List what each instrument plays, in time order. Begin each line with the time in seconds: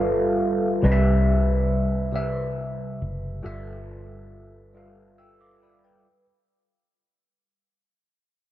Already playing: fingered electric bass G1, tine electric piano G3 F4 A4 B4 E5 F5
0.82 fingered electric bass C2, tine electric piano C3 G3 B4 D#5
0.92 tine electric piano E5
2.12 tine electric piano C3 G3 B4 E5
3.02 fingered electric bass F#1
3.42 fingered electric bass G1, tine electric piano G3 F4 A4 B4 E5
4.74 tine electric piano G3 F4 A4 B4 F5
5.18 tine electric piano G5 E6
5.41 tine electric piano F5 D6
5.63 tine electric piano D5 B5
5.84 tine electric piano B4 G5